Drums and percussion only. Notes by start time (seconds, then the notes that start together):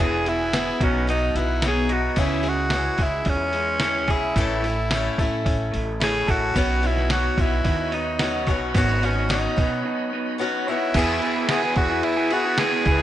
0.26 closed hi-hat
0.53 snare, closed hi-hat
0.81 kick, closed hi-hat
1.09 closed hi-hat
1.36 closed hi-hat
1.62 snare, closed hi-hat
1.89 closed hi-hat
2.16 kick, open hi-hat, crash
2.44 open hi-hat
2.70 snare, open hi-hat
2.98 kick, open hi-hat
3.25 kick, open hi-hat
3.53 open hi-hat
3.80 snare, open hi-hat
4.08 kick, open hi-hat
4.36 kick, open hi-hat
4.64 open hi-hat
4.91 snare, open hi-hat
5.18 kick, open hi-hat
5.46 kick, open hi-hat
5.74 open hi-hat
6.02 snare, open hi-hat
6.29 kick, open hi-hat
6.56 kick, open hi-hat
6.83 open hi-hat
6.96 snare
7.10 snare, open hi-hat
7.38 kick, open hi-hat
7.65 kick, open hi-hat
7.92 open hi-hat
8.19 snare, open hi-hat
8.47 kick, open hi-hat
8.75 kick, open hi-hat
9.03 open hi-hat
9.30 snare, open hi-hat
9.58 kick, open hi-hat
10.94 kick, crash
11.22 crash
11.49 snare, crash
11.76 kick, crash
12.03 crash
12.30 crash
12.58 snare, crash
12.86 kick, crash